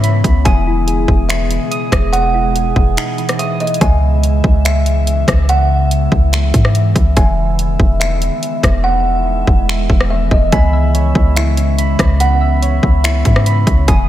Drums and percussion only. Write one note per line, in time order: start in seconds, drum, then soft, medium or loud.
0.04 closed hi-hat medium
0.24 kick medium
0.24 closed hi-hat medium
0.45 kick loud
0.45 closed hi-hat medium
0.88 closed hi-hat medium
1.08 kick medium
1.30 finger snap loud
1.30 closed hi-hat medium
1.51 closed hi-hat medium
1.72 closed hi-hat medium
1.92 kick loud
1.92 cross-stick loud
1.92 closed hi-hat medium
2.13 closed hi-hat medium
2.56 closed hi-hat medium
2.76 kick medium
2.97 finger snap loud
2.97 closed hi-hat medium
3.18 closed hi-hat soft
3.29 cross-stick loud
3.29 closed hi-hat medium
3.39 closed hi-hat medium
3.60 closed hi-hat soft
3.67 closed hi-hat medium
3.74 closed hi-hat medium
3.81 kick loud
3.81 closed hi-hat medium
4.23 closed hi-hat medium
4.44 kick medium
4.65 finger snap loud
4.65 closed hi-hat medium
4.86 closed hi-hat medium
5.07 closed hi-hat medium
5.28 kick loud
5.28 cross-stick loud
5.28 closed hi-hat medium
5.49 closed hi-hat medium
5.91 closed hi-hat medium
6.12 kick loud
6.33 finger snap loud
6.33 closed hi-hat medium
6.54 kick loud
6.54 closed hi-hat medium
6.65 cross-stick loud
6.75 closed hi-hat medium
6.96 kick loud
6.96 closed hi-hat medium
7.17 kick loud
7.17 closed hi-hat medium
7.59 closed hi-hat medium
7.80 kick loud
8.01 finger snap loud
8.01 closed hi-hat medium
8.22 closed hi-hat medium
8.43 closed hi-hat medium
8.63 kick medium
8.63 cross-stick loud
8.63 closed hi-hat medium
9.47 kick medium
9.69 finger snap loud
9.90 kick loud
10.01 cross-stick loud
10.31 kick loud
10.52 kick loud
10.52 closed hi-hat medium
10.95 closed hi-hat medium
11.15 kick medium
11.36 finger snap loud
11.36 closed hi-hat medium
11.57 closed hi-hat medium
11.78 closed hi-hat medium
11.99 kick loud
11.99 cross-stick loud
11.99 closed hi-hat medium
12.20 closed hi-hat medium
12.63 closed hi-hat medium
12.83 kick medium
13.04 finger snap loud
13.04 closed hi-hat medium
13.25 kick loud
13.25 closed hi-hat medium
13.36 cross-stick loud
13.46 closed hi-hat medium
13.67 kick loud
13.67 closed hi-hat medium
13.88 kick loud
13.88 closed hi-hat medium